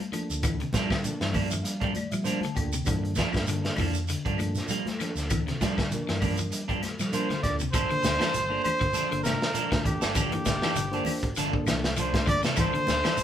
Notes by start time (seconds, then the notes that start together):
0.00 muted clean electric guitar stroke
0.11 F3 A#3 D4 F4 A4, muted clean electric guitar stroke, muted fingered electric bass stroke, closed hi-hat, high conga, claves, shekere
0.30 D2, closed hi-hat, shekere
0.42 E3, kick, closed hi-hat, low conga, claves, shekere
0.60 C3, muted clean electric guitar stroke, closed hi-hat
0.73 F3 G3 A#3 D4, kick, snare, closed hi-hat, high conga, shekere
0.90 D3, muted clean electric guitar stroke, kick, snare, high conga, claves, shekere
1.02 F3 A#3 D4 A4, closed hi-hat, shekere
1.21 G2 E3, muted clean electric guitar stroke, snare, closed hi-hat
1.33 F3 A#3 D4 D5, kick, open hi-hat, high conga, low conga, claves, shekere
1.50 F3 E5, muted clean electric guitar stroke, closed hi-hat, low conga, shekere
1.63 G3 F5, muted clean electric guitar stroke, closed hi-hat, shekere
1.80 F3 G3 A#3 D4, kick, closed hi-hat
1.94 D5, muted clean electric guitar stroke, closed hi-hat, high conga, claves, shekere
2.11 F3 G3 E5, closed hi-hat, shekere
2.23 F3 A#3 D4 F4 C5 F5, closed hi-hat, high conga, shekere
2.41 D3 A5, muted clean electric guitar stroke, closed hi-hat, high conga
2.55 D2 A#3 D4 F4 A4 G5, muted clean electric guitar stroke, kick, closed hi-hat, claves, shekere
2.73 C3, closed hi-hat, shekere
2.85 G2 E3 A#3 D4 F4 A4, kick, closed hi-hat, low conga, claves, shekere
3.03 muted clean electric guitar stroke, closed hi-hat
3.15 F3 A#3 D4, kick, snare, closed hi-hat, high conga, shekere
3.32 G2 A#3 D4 F4 A4, muted clean electric guitar stroke, kick, snare, closed hi-hat, high conga, claves, shekere
3.46 D3 A#3 D4 F4 A4, closed hi-hat, shekere
3.64 muted clean electric guitar stroke, snare, closed hi-hat
3.76 F2 E3 F3 A#3 D4, kick, open hi-hat, high conga, low conga, claves, shekere
3.94 muted clean electric guitar stroke, closed hi-hat, shekere
4.08 D3, muted clean electric guitar stroke, closed hi-hat, shekere
4.25 G2 F3 A#3 D4, kick, closed hi-hat
4.38 F3 A#3 D4 F4 A4, muted clean electric guitar stroke, closed hi-hat, high conga, claves, shekere
4.55 snare, closed hi-hat, shekere
4.68 F3 G3 A#3, closed hi-hat, high conga, shekere
4.86 muted clean electric guitar stroke, snare, closed hi-hat, high conga
4.99 F3 A#3 D4 F4 A4, muted fingered electric bass stroke, muted clean electric guitar stroke, snare, closed hi-hat, claves, shekere
5.15 D2, snare, closed hi-hat, shekere
5.30 E3, kick, closed hi-hat, low conga, claves, shekere
5.46 C3, muted clean electric guitar stroke, snare, closed hi-hat
5.61 F3 G3 A#3 D4, kick, snare, closed hi-hat, high conga, shekere
5.77 D3, muted clean electric guitar stroke, kick, snare, high conga, claves, shekere
5.91 F3 A#3 D4 A#4, closed hi-hat, shekere
6.08 G2 E3, muted clean electric guitar stroke, snare, closed hi-hat
6.21 F3 A#3 D4, kick, open hi-hat, high conga, low conga, claves, shekere
6.37 F3, muted clean electric guitar stroke, closed hi-hat, low conga, shekere
6.51 G3, muted clean electric guitar stroke, closed hi-hat, shekere
6.68 F3 G3 A#3 D4, kick, closed hi-hat
6.82 muted clean electric guitar stroke, snare, closed hi-hat, high conga, claves, shekere
6.99 F3 G3, snare, closed hi-hat, shekere
7.12 F3 A#3 D4 F4 A#4 C5, closed hi-hat, shekere
7.29 D3, muted clean electric guitar stroke, snare, closed hi-hat, high conga
7.43 D2 A#3 D4 F4 A4 D5, muted clean electric guitar stroke, kick, snare, closed hi-hat, claves, shekere
7.59 C3, closed hi-hat, shekere
7.73 G1 F3 A#3 D4 A4 C5, muted clean electric guitar stroke, kick, closed hi-hat, claves, shekere
7.90 D3 A#3 D4 F4 A4, muted clean electric guitar stroke, muted fingered electric bass stroke, closed hi-hat
8.02 D2, muted clean electric guitar stroke, snare, closed hi-hat, high conga, shekere
8.19 E3 A#3 D4 A4, snare, closed hi-hat, high conga, claves, shekere
8.33 G1, muted clean electric guitar stroke, closed hi-hat, shekere
8.49 A#3 D4 F4 A4, muted clean electric guitar stroke
8.64 C5, closed hi-hat, high conga, low conga, claves, shekere
8.80 G1 D3, muted clean electric guitar stroke, kick, closed hi-hat
8.93 F3 A#3 D4 A4, closed hi-hat, shekere
9.09 G1 D3 A#3 D4 F4 A4, muted clean electric guitar stroke, closed hi-hat
9.23 C3 A#4, muted clean electric guitar stroke, snare, closed hi-hat, high conga, claves, shekere
9.41 snare, shekere
9.53 F3 A#3 D4 A4, closed hi-hat, shekere
9.71 D3 A#3 D4 F4 A4, muted clean electric guitar stroke, kick, snare, closed hi-hat, high conga
9.84 G4, muted clean electric guitar stroke, kick, closed hi-hat, high conga, low conga, claves, shekere
10.01 G1 A#3 D4 A4, snare, closed hi-hat, shekere
10.15 D3 F3 A#3 D4 G4 A4, kick, closed hi-hat, low conga, claves, shekere
10.32 E3 A#3 D4 F4 A4, muted clean electric guitar stroke, closed hi-hat
10.45 G1 D3, muted clean electric guitar stroke, kick, snare, closed hi-hat, high conga, shekere
10.62 E3 A#3 D4 A4, snare, claves, shekere
10.75 G1 D3, muted clean electric guitar stroke, closed hi-hat, shekere
10.91 A#3 D4 F4 A4 C5, closed hi-hat
10.95 A#3
11.05 muted fingered electric bass stroke, open hi-hat, high conga, low conga, claves, shekere
11.23 G1, muted clean electric guitar stroke, kick, closed hi-hat
11.36 G1 D3 F3 A#3 D4 A4, closed hi-hat, shekere
11.52 A#3 D4 F4 A4, muted clean electric guitar stroke, kick
11.66 C2 E3, muted clean electric guitar stroke, snare, closed hi-hat, high conga, low conga, claves, shekere
11.84 snare, shekere
11.97 F3 A#3 D4 C5, muted clean electric guitar stroke, closed hi-hat, shekere
12.12 A#3 D4 F4 A4, muted clean electric guitar stroke, kick, snare, closed hi-hat, high conga
12.26 G1 D3 D5, muted clean electric guitar stroke, kick, closed hi-hat, high conga, low conga, claves, shekere
12.43 C3 A#3 D4 A4, muted fingered electric bass stroke, snare, closed hi-hat, shekere
12.56 G1 E3 F3 A#3 D4 A4, kick, snare, closed hi-hat, low conga, claves, shekere
12.61 C5
12.74 D3 A#3 D4 F4 A4, muted fingered electric bass stroke, muted clean electric guitar stroke, closed hi-hat
12.87 D2, muted clean electric guitar stroke, snare, closed hi-hat, high conga, shekere
13.04 E3 A#3 D4 A4, snare, closed hi-hat, claves, shekere
13.17 G1, muted clean electric guitar stroke, closed hi-hat, shekere